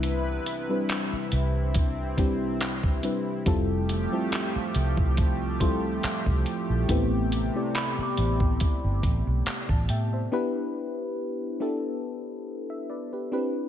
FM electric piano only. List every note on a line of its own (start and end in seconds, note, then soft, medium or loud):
0.00 0.62 G3 medium
0.00 0.62 C4 medium
0.00 0.62 D4 medium
0.00 0.63 E4 medium
0.00 0.63 B4 medium
0.69 2.09 G3 medium
0.69 2.09 C4 medium
0.69 2.09 D4 medium
0.69 2.09 E4 medium
0.69 2.10 B4 medium
2.17 2.98 G3 medium
2.17 2.98 C4 medium
2.17 2.99 D4 medium
2.17 2.99 E4 medium
2.17 2.99 G4 medium
3.03 3.44 G3 medium
3.03 3.44 C4 medium
3.03 3.44 D4 medium
3.03 3.44 E4 medium
3.03 3.44 B4 medium
3.46 4.08 G3 loud
3.46 4.08 C4 medium
3.46 4.08 E4 loud
3.46 4.08 F4 loud
3.46 4.08 A4 loud
4.12 5.52 G3 medium
4.12 5.52 C4 medium
4.12 5.52 E4 medium
4.12 5.52 F4 medium
4.12 5.52 A4 medium
5.60 6.81 G3 medium
5.60 6.82 C4 medium
5.60 6.82 E4 medium
5.60 6.82 F4 medium
5.60 6.82 A4 medium
6.89 7.50 A3 loud
6.89 7.51 B3 loud
6.89 7.51 C4 medium
6.89 7.51 E4 loud
6.89 7.51 G4 loud
7.55 8.94 A3 medium
7.55 8.95 C4 medium
7.55 8.95 E4 medium
7.55 8.95 G4 medium
7.55 8.95 D5 medium
9.70 9.88 A5 medium
9.90 10.12 E5 medium
9.90 10.11 G5 medium
10.13 10.54 C5 medium
10.13 10.53 E5 medium
10.32 11.53 B3 loud
10.32 11.53 D4 loud
10.32 11.53 E4 loud
10.32 11.53 G4 loud
10.32 11.54 B4 loud
11.60 12.41 B3 medium
11.60 12.41 D4 medium
11.60 12.41 E4 medium
11.60 12.42 G4 medium
11.60 12.42 A4 loud
12.70 12.88 E5 medium
12.90 13.12 B4 medium
12.90 13.11 D5 medium
13.13 13.32 G4 medium
13.13 13.32 B4 medium
13.32 13.69 C4 medium
13.32 13.69 D4 medium
13.32 13.69 E4 medium
13.32 13.69 G4 medium
13.32 13.69 B4 loud